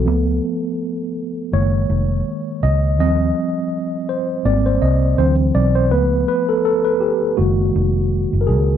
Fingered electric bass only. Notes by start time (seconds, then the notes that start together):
0.07 C#2
1.53 F#1
1.90 F1
2.63 C#2
2.99 D#2
4.45 G#1
4.82 C2
5.18 D2
5.55 B1
5.92 C#2
7.39 F#1
7.75 F1
8.33 F#1
8.49 C#2